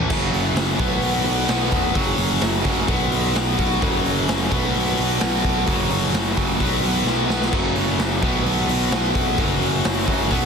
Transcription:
0.08 F#1 F#2 C#3 F#3, kick, crash
0.32 F#1, open hi-hat
0.54 F#1, snare, open hi-hat
0.77 B1 B2 F#3 B3, kick, open hi-hat
1.01 B1, open hi-hat
1.24 B1, open hi-hat
1.47 B1 B2 F#3 B3, snare, open hi-hat
1.62 snare
1.72 E1, kick, open hi-hat
1.93 F#1 F#2 C#3 F#3, kick, open hi-hat
2.18 F#1, open hi-hat
2.41 F#1, snare, open hi-hat
2.62 F#1 F#2 C#3 F#3, kick, open hi-hat
2.86 B1 B2 F#3 B3, kick, open hi-hat
3.12 B1, open hi-hat
3.35 B1, snare, open hi-hat
3.57 B1 B2 F#3 B3, kick, open hi-hat
3.80 F#1 F#2 C#3 F#3, kick, open hi-hat
4.04 F#1, open hi-hat
4.28 F#1, snare, open hi-hat
4.49 B1 B2 F#3 B3, kick, open hi-hat
4.74 B1, open hi-hat
4.97 B1, open hi-hat
5.19 B1 B2 F#3 B3, snare, open hi-hat
5.34 snare
5.44 B1, kick, open hi-hat
5.66 F#1 F#2 C#3 F#3, kick, open hi-hat
5.90 F#1, open hi-hat
6.13 F#1, snare, open hi-hat
6.37 F#1 F#2 C#3 F#3, kick, open hi-hat
6.60 B1 B2 F#3 B3, kick, open hi-hat
6.83 B1, open hi-hat
7.04 B1, snare
7.29 B1 B2 F#3 B3, snare
7.42 snare
7.50 F#1 F#2 C#3 F#3, kick, crash
7.76 F#1, open hi-hat
7.99 F#1, snare, open hi-hat
8.22 B1 B2 F#3 B3, kick, open hi-hat
8.44 B1, open hi-hat
8.68 B1, open hi-hat
8.90 B1 B2 F#3 B3, snare, open hi-hat
9.05 snare
9.15 B1, kick, open hi-hat
9.36 F#1 F#2 C#3 F#3, kick, open hi-hat
9.60 F#1, open hi-hat
9.84 F#1, snare, open hi-hat
10.05 F#1 F#2 C#3 F#3, kick, open hi-hat
10.29 B1 B2 F#3 B3, kick, open hi-hat

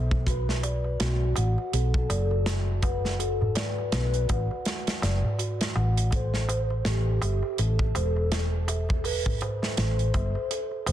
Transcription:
Already playing: B1 A4 C5 E5
0.11 kick, darbuka tek
0.26 F#4 B4, kick, closed hi-hat, darbuka tek
0.49 snare, darbuka tek
0.63 D5, closed hi-hat, darbuka tek
0.84 darbuka tek
1.00 B1 F#4, snare, closed hi-hat, darbuka tek
1.21 darbuka tek
1.36 A1 F#5, closed hi-hat, darbuka tek
1.58 darbuka tek
1.72 B1 F#4 A4, closed hi-hat, darbuka tek
1.94 kick, darbuka tek
2.10 F#1 D5, closed hi-hat, darbuka tek
2.31 darbuka tek
2.46 F#4, snare, closed hi-hat, darbuka tek
2.68 darbuka tek
2.82 B4 F#5, kick, closed hi-hat, darbuka tek
3.05 snare, darbuka tek
3.19 F#4 A4, closed hi-hat, darbuka tek
3.41 darbuka tek, darbuka dum
3.55 B4 D5, snare, closed hi-hat, darbuka tek
3.78 darbuka tek
3.92 B1 F#4, snare, closed hi-hat, darbuka tek
4.14 closed hi-hat, darbuka tek
4.29 A1 F#5, kick, closed hi-hat, darbuka tek
4.51 darbuka tek
4.65 F#4, snare, closed hi-hat, darbuka tek
4.87 snare, closed hi-hat, darbuka tek
5.02 F#1 D5, snare, closed hi-hat, darbuka tek
5.24 darbuka tek, darbuka dum
5.39 F#4, closed hi-hat, darbuka tek
5.61 snare, closed hi-hat, darbuka tek
5.75 A1 F#5, darbuka tek
5.97 closed hi-hat, darbuka tek
6.11 A4 C5, kick, closed hi-hat, darbuka tek
6.33 snare, darbuka tek
6.49 C5, closed hi-hat, darbuka tek
6.70 darbuka tek
6.85 A1 G4 A4, snare, closed hi-hat, darbuka tek
7.07 darbuka tek
7.22 G1 E5, closed hi-hat, darbuka tek
7.43 darbuka tek
7.58 A1 A4, closed hi-hat, darbuka tek
7.79 kick, darbuka tek
7.95 E1 C5, closed hi-hat, darbuka tek
8.16 darbuka tek
8.32 A4, snare, closed hi-hat, darbuka tek
8.54 darbuka tek
8.68 E5, closed hi-hat, darbuka tek
8.89 kick, darbuka tek
9.04 A4 B4, open hi-hat, darbuka tek
9.26 kick, darbuka tek, darbuka dum
9.41 C5, closed hi-hat, darbuka tek
9.62 snare, darbuka tek
9.77 A1 A4 C5, snare, closed hi-hat, darbuka tek
9.99 closed hi-hat, darbuka tek
10.14 G1 E5, kick, closed hi-hat, darbuka tek
10.35 darbuka tek
10.51 A4, closed hi-hat, darbuka tek
10.71 darbuka tek
10.87 E1 C5, closed hi-hat, darbuka tek

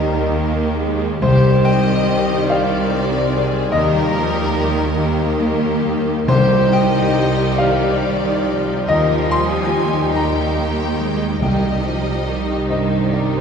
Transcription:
Already playing: D#2 D#3 G3 A#3 D#4 G4 A#4 D#5
0.34 A#3
0.55 D#4
0.77 G#3
1.00 D#4
1.20 C2 C3 D#3 G3 C4 G4 C5
1.45 C4
1.65 D#5 G5
1.88 D#4
2.31 D#4
2.48 C4 D#4 G4 D5 F5 G5
2.71 D#4
2.90 C4 A#4
3.32 C4 G#4
3.52 G3
3.71 D#2 D#3 G3 A#3 G4 A#4 D#5
3.94 G3
4.12 F3 D#4
4.55 D#3 D#4
4.96 D#3 A#3 D#4 G4
5.39 G3
5.61 D#4
5.83 G3
6.06 D#4
6.28 C2 C3 D#3 G3 D#4 G4 C5
6.52 C4
6.73 G3 D#5 G5
6.95 D#4
7.38 D#4
7.57 D#3 D#4 G4 D5 F5
7.79 D#4
8.00 D#3 C4
8.22 G3
8.44 F3 C4
8.67 G3
8.87 D#2 D#3 G3 D#4 G4 A#4 D#5
9.11 G3
9.31 G#5 C6
9.55 A#4
9.76 D#4
9.96 G4
10.16 D#3 G3 D#4 G4 G5 A#5
10.39 G4
10.58 G3 A#3
10.80 D#4
11.00 G3 G#3
11.21 D#4
11.41 C2 C3 D#3 G3 D#4 G4 D#5 G5
11.63 C4
11.83 F3 G3
12.06 D#4
12.26 D#3 G4
12.50 D#4
12.69 G2 G4 C5 D#5
12.92 D#4
13.13 C4 A#4 D5
13.35 G3 G#4 C5

